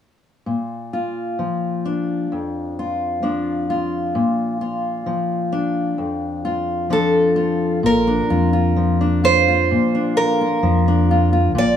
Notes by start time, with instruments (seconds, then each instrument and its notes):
0.46 steel-string acoustic guitar A#2
0.93 steel-string acoustic guitar F4
1.39 steel-string acoustic guitar F3
1.86 steel-string acoustic guitar D4
2.32 steel-string acoustic guitar F2
2.79 steel-string acoustic guitar F4
3.22 steel-string acoustic guitar F3 D4
3.70 steel-string acoustic guitar F4
4.15 steel-string acoustic guitar A#2
4.61 steel-string acoustic guitar F4
5.06 steel-string acoustic guitar F3
5.52 steel-string acoustic guitar D4
5.98 steel-string acoustic guitar F2
6.45 steel-string acoustic guitar F4
6.90 steel-string acoustic guitar F3 D4 A4
7.36 steel-string acoustic guitar F4
7.83 fingered electric bass A#1, steel-string acoustic guitar A#2 A#4
8.07 steel-string acoustic guitar D4
8.30 fingered electric bass F2, steel-string acoustic guitar F4
8.53 steel-string acoustic guitar F4
8.76 steel-string acoustic guitar F3
9.01 steel-string acoustic guitar D4
9.24 steel-string acoustic guitar F4 C5
9.48 steel-string acoustic guitar F4
9.71 steel-string acoustic guitar A#2
9.95 steel-string acoustic guitar D4
10.17 steel-string acoustic guitar F4 A#4
10.41 steel-string acoustic guitar F4
10.63 fingered electric bass F2, steel-string acoustic guitar F3
10.88 steel-string acoustic guitar D4
11.11 steel-string acoustic guitar F4
11.33 steel-string acoustic guitar F4
11.55 fingered electric bass A#1, steel-string acoustic guitar A#2 D5